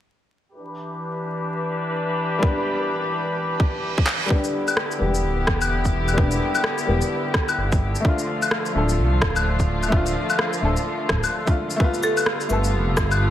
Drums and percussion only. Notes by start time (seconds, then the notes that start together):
2.43 kick
3.60 kick
3.98 kick
4.06 clap
4.30 kick
4.44 shaker
4.68 claves, shaker
4.77 cross-stick
4.91 shaker
5.15 shaker
5.47 kick, cross-stick
5.62 claves, shaker
5.85 kick, shaker
6.08 claves, shaker
6.18 kick
6.31 shaker
6.55 claves, shaker
6.64 cross-stick
6.78 shaker
7.02 shaker
7.34 kick, cross-stick
7.49 claves, shaker
7.72 kick, shaker
7.95 shaker
8.05 kick
8.19 shaker
8.42 claves, shaker
8.51 cross-stick
8.66 shaker
8.89 shaker
9.22 kick, cross-stick
9.36 claves, shaker
9.59 kick, shaker
9.83 claves, shaker
9.92 kick
10.06 shaker
10.30 claves, shaker
10.39 cross-stick
10.53 shaker
10.77 shaker
11.09 kick, cross-stick
11.24 claves, shaker
11.47 kick, shaker
11.70 shaker
11.80 kick
11.94 shaker
12.03 cabasa
12.17 claves, shaker
12.26 cross-stick
12.41 shaker
12.50 cabasa
12.64 shaker
12.97 kick, cross-stick, cabasa
13.11 claves, shaker